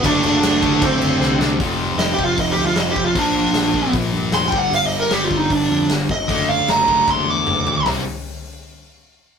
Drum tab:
CC |xxxxxx--|--------|--------|--------|
HH |--------|o-o-o-o-|o-o-o-o-|o-o-o-o-|
SD |--o---oo|--o---o-|--o---o-|--o---o-|
T2 |--------|--------|--------|--------|
FT |--------|--------|--------|--------|
BD |o--oo---|o--oo--o|o--oo--o|---oo--o|

CC |--------|--------|
HH |o-o-----|o-------|
SD |--o-o---|o-------|
T2 |------o-|--------|
FT |-------o|o-------|
BD |o--oo---|--------|